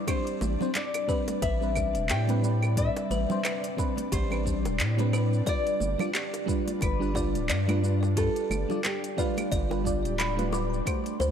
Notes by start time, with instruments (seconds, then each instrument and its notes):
Already playing: ambient pad G3 D5
0.07 fm electric piano G3 C4 D4 C5, ambient pad C4 D4, kalimba G4, nylon-string guitar C5, kick, closed hi-hat, high bongo, claves, shaker
0.27 closed hi-hat, shaker
0.41 analog synth bass A1, high bongo, high conga, shaker
0.60 fm electric piano G3 C4 D4 C5, low conga, shaker
0.75 nylon-string guitar D5, clap, closed hi-hat, shaker
0.94 closed hi-hat, high bongo, claves, shaker
1.08 fm electric piano G3 C4 D4 B4, kalimba B4, kick, shaker
1.28 closed hi-hat, high bongo, high conga, shaker
1.42 analog synth bass A1, kalimba B4, nylon-string guitar E5, kick, closed hi-hat, shaker
1.61 fm electric piano G3 C4 D4 B4, shaker
1.75 fm electric piano G3 C4 D4, kick, high bongo, claves, shaker
1.95 analog synth bass E1, closed hi-hat, shaker
2.09 analog synth bass A2, kalimba G4, nylon-string guitar G5, clap, closed hi-hat, high bongo, shaker
2.27 fm electric piano G3 C4 D4 B4, closed hi-hat, high conga, shaker
2.42 fm electric piano G3 C4 D4 B4, shaker
2.63 high bongo, claves, shaker
2.76 fm electric piano G3 C4 D4 B4, nylon-string guitar E5, kick, closed hi-hat, shaker
2.97 closed hi-hat, high bongo, shaker
3.10 analog synth bass A1, kalimba B4, high conga, shaker
3.29 fm electric piano G3 C4 D4 C5, low conga, shaker
3.45 kalimba B4, clap, closed hi-hat, high bongo, claves, shaker
3.64 closed hi-hat, shaker
3.77 fm electric piano G3 C4 D4 B4, kick, high bongo, shaker
3.97 closed hi-hat, high conga, shaker
4.12 analog synth bass A1, kalimba G4, nylon-string guitar C5, kick, closed hi-hat, shaker
4.30 fm electric piano G3 C4 D4 B4, high bongo, claves, shaker
4.44 fm electric piano G3 C4 D4, kick, shaker
4.65 analog synth bass E1, closed hi-hat, high bongo, shaker
4.80 analog synth bass A2, clap, closed hi-hat, shaker
4.98 fm electric piano G3 C4 D4 B4, closed hi-hat, high conga, shaker
5.12 fm electric piano G3 C4 D4 B4, kalimba B4, high bongo, claves, shaker
5.33 shaker
5.46 fm electric piano G3 D4 F4 B4, ambient pad F4, kalimba D5, nylon-string guitar D5, kick, closed hi-hat, high bongo, shaker
5.67 closed hi-hat, shaker
5.80 analog synth bass G1, high conga, shaker
5.98 fm electric piano G3 D4 F4 D5, high bongo, low conga, claves, shaker
6.14 kalimba G4, clap, closed hi-hat, shaker
6.34 closed hi-hat, high bongo, shaker
6.46 fm electric piano G3 D4 F4 B4, kick, shaker
6.68 closed hi-hat, high conga, shaker
6.81 analog synth bass G1, nylon-string guitar B4, kick, closed hi-hat, high bongo, claves, shaker
7.00 fm electric piano G3 D4 F4 B4, shaker
7.14 fm electric piano G3 D4 F4 D5, kalimba D5, kick, high bongo, shaker
7.35 analog synth bass D1, closed hi-hat, shaker
7.49 analog synth bass G2, kalimba D5, clap, closed hi-hat, shaker
7.68 fm electric piano G3 D4 F4 B4, closed hi-hat, high bongo, high conga, claves, shaker
7.83 fm electric piano G3 D4 F4 B4, shaker
8.03 high bongo, shaker
8.16 fm electric piano G3 D4 F4 B4, kalimba G4, ambient pad G4, nylon-string guitar A4, kick, closed hi-hat, shaker
8.36 closed hi-hat, shaker
8.50 analog synth bass G1, high bongo, high conga, claves, shaker
8.69 fm electric piano G3 D4 F4 D5, low conga, shaker
8.84 nylon-string guitar G4, clap, closed hi-hat, high bongo, shaker
9.04 closed hi-hat, shaker
9.17 fm electric piano G3 D4 F4 B4, nylon-string guitar F4, kalimba D5, kick, shaker
9.37 closed hi-hat, high bongo, high conga, claves, shaker
9.52 analog synth bass G1, kalimba D5, kick, closed hi-hat, shaker
9.70 fm electric piano G3 D4 F4 B4, high bongo, shaker
9.84 fm electric piano G3 D4 F4 D5, kick, shaker
10.04 analog synth bass D1, closed hi-hat, shaker
10.19 kalimba B5, clap, closed hi-hat, high bongo, claves, shaker
10.37 fm electric piano G3 D4 F4 B4, closed hi-hat, high conga, shaker
10.51 fm electric piano G3 D4 F4 B4, kalimba D6, high bongo, shaker
10.73 shaker
10.85 fm electric piano A3 D4 F#4 C5, ambient pad A3 F#4 C5, kick, closed hi-hat, high bongo, claves, shaker
11.06 closed hi-hat, shaker
11.20 analog synth bass D2, kalimba C5, high bongo, high conga, shaker